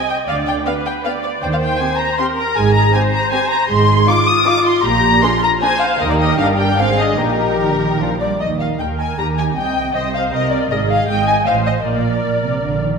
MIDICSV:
0, 0, Header, 1, 6, 480
1, 0, Start_track
1, 0, Tempo, 380228
1, 356, Time_signature, 3, 2, 24, 8
1, 6113, Tempo, 389105
1, 8513, Tempo, 404040
1, 10433, Tempo, 385356
1, 16140, End_track
2, 0, Start_track
2, 0, Title_t, "Violin section"
2, 0, Program_c, 0, 48
2, 112, Note_on_c, 0, 79, 66
2, 209, Note_off_c, 0, 79, 0
2, 349, Note_on_c, 0, 77, 85
2, 446, Note_off_c, 0, 77, 0
2, 594, Note_on_c, 0, 79, 78
2, 691, Note_off_c, 0, 79, 0
2, 831, Note_on_c, 0, 77, 75
2, 929, Note_off_c, 0, 77, 0
2, 1084, Note_on_c, 0, 79, 77
2, 1180, Note_off_c, 0, 79, 0
2, 1316, Note_on_c, 0, 77, 77
2, 1413, Note_off_c, 0, 77, 0
2, 1556, Note_on_c, 0, 74, 67
2, 1653, Note_off_c, 0, 74, 0
2, 1796, Note_on_c, 0, 79, 83
2, 1845, Note_off_c, 0, 79, 0
2, 1925, Note_on_c, 0, 77, 66
2, 1972, Note_off_c, 0, 77, 0
2, 2031, Note_on_c, 0, 79, 86
2, 2263, Note_on_c, 0, 80, 84
2, 2269, Note_off_c, 0, 79, 0
2, 2504, Note_on_c, 0, 82, 84
2, 2510, Note_off_c, 0, 80, 0
2, 2751, Note_off_c, 0, 82, 0
2, 2758, Note_on_c, 0, 84, 87
2, 2854, Note_off_c, 0, 84, 0
2, 3000, Note_on_c, 0, 82, 84
2, 3228, Note_on_c, 0, 80, 96
2, 3234, Note_off_c, 0, 82, 0
2, 3463, Note_on_c, 0, 82, 91
2, 3471, Note_off_c, 0, 80, 0
2, 3702, Note_off_c, 0, 82, 0
2, 3709, Note_on_c, 0, 80, 80
2, 3805, Note_off_c, 0, 80, 0
2, 3939, Note_on_c, 0, 82, 90
2, 4179, Note_off_c, 0, 82, 0
2, 4190, Note_on_c, 0, 80, 96
2, 4421, Note_on_c, 0, 82, 89
2, 4422, Note_off_c, 0, 80, 0
2, 4657, Note_off_c, 0, 82, 0
2, 4661, Note_on_c, 0, 84, 103
2, 5138, Note_off_c, 0, 84, 0
2, 5153, Note_on_c, 0, 86, 98
2, 5381, Note_on_c, 0, 87, 100
2, 5393, Note_off_c, 0, 86, 0
2, 5626, Note_off_c, 0, 87, 0
2, 5635, Note_on_c, 0, 86, 112
2, 5874, Note_off_c, 0, 86, 0
2, 5878, Note_on_c, 0, 84, 93
2, 6113, Note_off_c, 0, 84, 0
2, 6125, Note_on_c, 0, 82, 113
2, 6593, Note_on_c, 0, 84, 99
2, 6598, Note_off_c, 0, 82, 0
2, 6833, Note_off_c, 0, 84, 0
2, 6834, Note_on_c, 0, 82, 98
2, 6930, Note_off_c, 0, 82, 0
2, 7067, Note_on_c, 0, 80, 102
2, 7304, Note_on_c, 0, 77, 91
2, 7306, Note_off_c, 0, 80, 0
2, 7538, Note_on_c, 0, 75, 100
2, 7548, Note_off_c, 0, 77, 0
2, 7661, Note_on_c, 0, 74, 79
2, 7665, Note_off_c, 0, 75, 0
2, 7711, Note_off_c, 0, 74, 0
2, 7779, Note_on_c, 0, 75, 90
2, 8017, Note_on_c, 0, 77, 94
2, 8019, Note_off_c, 0, 75, 0
2, 8116, Note_off_c, 0, 77, 0
2, 8262, Note_on_c, 0, 79, 87
2, 8503, Note_on_c, 0, 77, 96
2, 8505, Note_off_c, 0, 79, 0
2, 8746, Note_off_c, 0, 77, 0
2, 8751, Note_on_c, 0, 75, 80
2, 8983, Note_on_c, 0, 70, 80
2, 8991, Note_off_c, 0, 75, 0
2, 10190, Note_on_c, 0, 74, 59
2, 10194, Note_off_c, 0, 70, 0
2, 10415, Note_off_c, 0, 74, 0
2, 10432, Note_on_c, 0, 75, 58
2, 10529, Note_off_c, 0, 75, 0
2, 10678, Note_on_c, 0, 77, 54
2, 10774, Note_off_c, 0, 77, 0
2, 10922, Note_on_c, 0, 79, 57
2, 11018, Note_off_c, 0, 79, 0
2, 11170, Note_on_c, 0, 80, 60
2, 11401, Note_off_c, 0, 80, 0
2, 11414, Note_on_c, 0, 82, 69
2, 11507, Note_off_c, 0, 82, 0
2, 11643, Note_on_c, 0, 80, 61
2, 11739, Note_off_c, 0, 80, 0
2, 11882, Note_on_c, 0, 79, 74
2, 12349, Note_off_c, 0, 79, 0
2, 12356, Note_on_c, 0, 75, 68
2, 12590, Note_off_c, 0, 75, 0
2, 12598, Note_on_c, 0, 77, 73
2, 12692, Note_off_c, 0, 77, 0
2, 12826, Note_on_c, 0, 75, 75
2, 13057, Note_on_c, 0, 74, 67
2, 13061, Note_off_c, 0, 75, 0
2, 13154, Note_off_c, 0, 74, 0
2, 13304, Note_on_c, 0, 75, 68
2, 13400, Note_off_c, 0, 75, 0
2, 13538, Note_on_c, 0, 77, 82
2, 13763, Note_on_c, 0, 79, 81
2, 13775, Note_off_c, 0, 77, 0
2, 14004, Note_off_c, 0, 79, 0
2, 14006, Note_on_c, 0, 80, 74
2, 14103, Note_off_c, 0, 80, 0
2, 14249, Note_on_c, 0, 77, 74
2, 14345, Note_off_c, 0, 77, 0
2, 14490, Note_on_c, 0, 75, 56
2, 14586, Note_off_c, 0, 75, 0
2, 14728, Note_on_c, 0, 74, 63
2, 15925, Note_off_c, 0, 74, 0
2, 16140, End_track
3, 0, Start_track
3, 0, Title_t, "Viola section"
3, 0, Program_c, 1, 48
3, 0, Note_on_c, 1, 75, 72
3, 337, Note_off_c, 1, 75, 0
3, 347, Note_on_c, 1, 74, 68
3, 823, Note_off_c, 1, 74, 0
3, 834, Note_on_c, 1, 71, 63
3, 1308, Note_off_c, 1, 71, 0
3, 1317, Note_on_c, 1, 74, 65
3, 1800, Note_off_c, 1, 74, 0
3, 1804, Note_on_c, 1, 72, 63
3, 2759, Note_off_c, 1, 72, 0
3, 2763, Note_on_c, 1, 70, 70
3, 3240, Note_off_c, 1, 70, 0
3, 3242, Note_on_c, 1, 68, 68
3, 3713, Note_on_c, 1, 72, 74
3, 3716, Note_off_c, 1, 68, 0
3, 4646, Note_off_c, 1, 72, 0
3, 4673, Note_on_c, 1, 68, 69
3, 5144, Note_off_c, 1, 68, 0
3, 5159, Note_on_c, 1, 65, 80
3, 6116, Note_on_c, 1, 67, 73
3, 6120, Note_off_c, 1, 65, 0
3, 6584, Note_off_c, 1, 67, 0
3, 6594, Note_on_c, 1, 65, 73
3, 7067, Note_on_c, 1, 72, 83
3, 7074, Note_off_c, 1, 65, 0
3, 7541, Note_off_c, 1, 72, 0
3, 7546, Note_on_c, 1, 70, 68
3, 8511, Note_off_c, 1, 70, 0
3, 8513, Note_on_c, 1, 68, 68
3, 8990, Note_off_c, 1, 68, 0
3, 8995, Note_on_c, 1, 67, 62
3, 10176, Note_off_c, 1, 67, 0
3, 10921, Note_on_c, 1, 70, 48
3, 11368, Note_off_c, 1, 70, 0
3, 11407, Note_on_c, 1, 67, 45
3, 11882, Note_on_c, 1, 75, 51
3, 11884, Note_off_c, 1, 67, 0
3, 12349, Note_off_c, 1, 75, 0
3, 12354, Note_on_c, 1, 72, 57
3, 12830, Note_off_c, 1, 72, 0
3, 12833, Note_on_c, 1, 70, 63
3, 13306, Note_off_c, 1, 70, 0
3, 13308, Note_on_c, 1, 68, 60
3, 13784, Note_off_c, 1, 68, 0
3, 13784, Note_on_c, 1, 75, 63
3, 14247, Note_off_c, 1, 75, 0
3, 14252, Note_on_c, 1, 72, 57
3, 14728, Note_on_c, 1, 70, 50
3, 14731, Note_off_c, 1, 72, 0
3, 15926, Note_off_c, 1, 70, 0
3, 16140, End_track
4, 0, Start_track
4, 0, Title_t, "Violin section"
4, 0, Program_c, 2, 48
4, 836, Note_on_c, 2, 59, 46
4, 838, Note_on_c, 2, 67, 48
4, 937, Note_off_c, 2, 59, 0
4, 939, Note_off_c, 2, 67, 0
4, 1321, Note_on_c, 2, 59, 51
4, 1322, Note_on_c, 2, 67, 54
4, 1422, Note_off_c, 2, 59, 0
4, 1423, Note_off_c, 2, 67, 0
4, 2275, Note_on_c, 2, 60, 51
4, 2276, Note_on_c, 2, 67, 52
4, 2376, Note_off_c, 2, 60, 0
4, 2377, Note_off_c, 2, 67, 0
4, 2762, Note_on_c, 2, 67, 57
4, 2764, Note_on_c, 2, 60, 52
4, 2863, Note_off_c, 2, 67, 0
4, 2865, Note_off_c, 2, 60, 0
4, 3710, Note_on_c, 2, 60, 52
4, 3713, Note_on_c, 2, 67, 53
4, 3811, Note_off_c, 2, 60, 0
4, 3814, Note_off_c, 2, 67, 0
4, 4187, Note_on_c, 2, 60, 60
4, 4190, Note_on_c, 2, 67, 60
4, 4288, Note_off_c, 2, 60, 0
4, 4291, Note_off_c, 2, 67, 0
4, 5139, Note_on_c, 2, 63, 61
4, 5139, Note_on_c, 2, 65, 54
4, 5240, Note_off_c, 2, 63, 0
4, 5240, Note_off_c, 2, 65, 0
4, 5619, Note_on_c, 2, 63, 66
4, 5622, Note_on_c, 2, 65, 66
4, 5720, Note_off_c, 2, 63, 0
4, 5723, Note_off_c, 2, 65, 0
4, 6581, Note_on_c, 2, 68, 66
4, 6584, Note_on_c, 2, 62, 64
4, 6680, Note_off_c, 2, 68, 0
4, 6683, Note_off_c, 2, 62, 0
4, 7069, Note_on_c, 2, 62, 66
4, 7071, Note_on_c, 2, 68, 67
4, 7168, Note_off_c, 2, 62, 0
4, 7169, Note_off_c, 2, 68, 0
4, 7551, Note_on_c, 2, 67, 66
4, 7553, Note_on_c, 2, 63, 72
4, 7997, Note_off_c, 2, 63, 0
4, 8023, Note_on_c, 2, 62, 65
4, 8464, Note_off_c, 2, 67, 0
4, 8502, Note_off_c, 2, 62, 0
4, 8512, Note_on_c, 2, 60, 64
4, 8516, Note_on_c, 2, 68, 60
4, 8751, Note_off_c, 2, 60, 0
4, 8756, Note_on_c, 2, 62, 58
4, 8987, Note_on_c, 2, 67, 61
4, 8992, Note_off_c, 2, 68, 0
4, 8993, Note_off_c, 2, 62, 0
4, 8993, Note_on_c, 2, 63, 57
4, 9940, Note_off_c, 2, 63, 0
4, 9956, Note_off_c, 2, 67, 0
4, 9962, Note_on_c, 2, 62, 55
4, 9964, Note_on_c, 2, 65, 56
4, 10057, Note_off_c, 2, 62, 0
4, 10059, Note_off_c, 2, 65, 0
4, 10200, Note_on_c, 2, 74, 55
4, 10295, Note_off_c, 2, 74, 0
4, 10438, Note_on_c, 2, 75, 51
4, 10675, Note_off_c, 2, 75, 0
4, 10679, Note_on_c, 2, 77, 44
4, 10914, Note_on_c, 2, 79, 52
4, 10915, Note_off_c, 2, 77, 0
4, 11011, Note_off_c, 2, 79, 0
4, 11154, Note_on_c, 2, 80, 49
4, 11251, Note_off_c, 2, 80, 0
4, 11404, Note_on_c, 2, 82, 56
4, 11500, Note_off_c, 2, 82, 0
4, 11640, Note_on_c, 2, 80, 57
4, 11875, Note_off_c, 2, 80, 0
4, 11881, Note_on_c, 2, 79, 57
4, 12348, Note_off_c, 2, 79, 0
4, 12358, Note_on_c, 2, 75, 59
4, 12453, Note_off_c, 2, 75, 0
4, 12596, Note_on_c, 2, 77, 62
4, 12828, Note_off_c, 2, 77, 0
4, 12838, Note_on_c, 2, 75, 63
4, 13067, Note_off_c, 2, 75, 0
4, 13070, Note_on_c, 2, 74, 61
4, 13306, Note_off_c, 2, 74, 0
4, 13307, Note_on_c, 2, 75, 66
4, 13540, Note_off_c, 2, 75, 0
4, 13546, Note_on_c, 2, 77, 62
4, 13783, Note_off_c, 2, 77, 0
4, 13784, Note_on_c, 2, 79, 74
4, 14015, Note_off_c, 2, 79, 0
4, 14021, Note_on_c, 2, 80, 68
4, 14248, Note_on_c, 2, 77, 70
4, 14256, Note_off_c, 2, 80, 0
4, 14484, Note_off_c, 2, 77, 0
4, 14484, Note_on_c, 2, 75, 58
4, 14723, Note_off_c, 2, 75, 0
4, 14733, Note_on_c, 2, 74, 50
4, 15952, Note_off_c, 2, 74, 0
4, 16140, End_track
5, 0, Start_track
5, 0, Title_t, "Cello section"
5, 0, Program_c, 3, 48
5, 351, Note_on_c, 3, 50, 60
5, 754, Note_off_c, 3, 50, 0
5, 1792, Note_on_c, 3, 51, 65
5, 2194, Note_off_c, 3, 51, 0
5, 3230, Note_on_c, 3, 44, 65
5, 3630, Note_off_c, 3, 44, 0
5, 4658, Note_on_c, 3, 44, 77
5, 5065, Note_off_c, 3, 44, 0
5, 6115, Note_on_c, 3, 46, 79
5, 6513, Note_off_c, 3, 46, 0
5, 7543, Note_on_c, 3, 39, 71
5, 7992, Note_off_c, 3, 39, 0
5, 8025, Note_on_c, 3, 43, 61
5, 8503, Note_off_c, 3, 43, 0
5, 8507, Note_on_c, 3, 44, 61
5, 8987, Note_off_c, 3, 44, 0
5, 8993, Note_on_c, 3, 46, 57
5, 9429, Note_off_c, 3, 46, 0
5, 9474, Note_on_c, 3, 51, 60
5, 9588, Note_off_c, 3, 51, 0
5, 9606, Note_on_c, 3, 50, 54
5, 9718, Note_on_c, 3, 51, 62
5, 9723, Note_off_c, 3, 50, 0
5, 9955, Note_on_c, 3, 53, 62
5, 9958, Note_off_c, 3, 51, 0
5, 10196, Note_on_c, 3, 55, 57
5, 10197, Note_off_c, 3, 53, 0
5, 10430, Note_off_c, 3, 55, 0
5, 10430, Note_on_c, 3, 51, 47
5, 10860, Note_off_c, 3, 51, 0
5, 10914, Note_on_c, 3, 51, 46
5, 11341, Note_off_c, 3, 51, 0
5, 11401, Note_on_c, 3, 51, 43
5, 11825, Note_off_c, 3, 51, 0
5, 11877, Note_on_c, 3, 48, 54
5, 12300, Note_off_c, 3, 48, 0
5, 12357, Note_on_c, 3, 48, 56
5, 12777, Note_off_c, 3, 48, 0
5, 12829, Note_on_c, 3, 48, 61
5, 13248, Note_off_c, 3, 48, 0
5, 13303, Note_on_c, 3, 44, 70
5, 13725, Note_off_c, 3, 44, 0
5, 13776, Note_on_c, 3, 44, 60
5, 14196, Note_off_c, 3, 44, 0
5, 14243, Note_on_c, 3, 45, 57
5, 14670, Note_off_c, 3, 45, 0
5, 14722, Note_on_c, 3, 46, 52
5, 15157, Note_off_c, 3, 46, 0
5, 15210, Note_on_c, 3, 46, 50
5, 15309, Note_off_c, 3, 46, 0
5, 15454, Note_on_c, 3, 48, 50
5, 15696, Note_on_c, 3, 50, 53
5, 15698, Note_off_c, 3, 48, 0
5, 15941, Note_on_c, 3, 51, 49
5, 15942, Note_off_c, 3, 50, 0
5, 16140, Note_off_c, 3, 51, 0
5, 16140, End_track
6, 0, Start_track
6, 0, Title_t, "Double bass section"
6, 0, Program_c, 4, 48
6, 354, Note_on_c, 4, 38, 57
6, 756, Note_off_c, 4, 38, 0
6, 1797, Note_on_c, 4, 39, 61
6, 2197, Note_off_c, 4, 39, 0
6, 3239, Note_on_c, 4, 32, 65
6, 3635, Note_off_c, 4, 32, 0
6, 4665, Note_on_c, 4, 32, 69
6, 5068, Note_off_c, 4, 32, 0
6, 6114, Note_on_c, 4, 34, 78
6, 6512, Note_off_c, 4, 34, 0
6, 7551, Note_on_c, 4, 39, 67
6, 7996, Note_off_c, 4, 39, 0
6, 8035, Note_on_c, 4, 31, 66
6, 8508, Note_off_c, 4, 31, 0
6, 8518, Note_on_c, 4, 32, 59
6, 8993, Note_off_c, 4, 32, 0
6, 8994, Note_on_c, 4, 34, 58
6, 9944, Note_off_c, 4, 34, 0
6, 9959, Note_on_c, 4, 34, 55
6, 10194, Note_off_c, 4, 34, 0
6, 10437, Note_on_c, 4, 39, 44
6, 10864, Note_off_c, 4, 39, 0
6, 10927, Note_on_c, 4, 39, 45
6, 11348, Note_off_c, 4, 39, 0
6, 11405, Note_on_c, 4, 39, 49
6, 11827, Note_off_c, 4, 39, 0
6, 11886, Note_on_c, 4, 36, 52
6, 12304, Note_off_c, 4, 36, 0
6, 12358, Note_on_c, 4, 36, 56
6, 12777, Note_off_c, 4, 36, 0
6, 12838, Note_on_c, 4, 36, 56
6, 13252, Note_off_c, 4, 36, 0
6, 13308, Note_on_c, 4, 32, 59
6, 13728, Note_off_c, 4, 32, 0
6, 13782, Note_on_c, 4, 32, 62
6, 14199, Note_off_c, 4, 32, 0
6, 14251, Note_on_c, 4, 33, 56
6, 14673, Note_off_c, 4, 33, 0
6, 14729, Note_on_c, 4, 34, 47
6, 15160, Note_off_c, 4, 34, 0
6, 15217, Note_on_c, 4, 34, 47
6, 15649, Note_off_c, 4, 34, 0
6, 15699, Note_on_c, 4, 34, 43
6, 16135, Note_off_c, 4, 34, 0
6, 16140, End_track
0, 0, End_of_file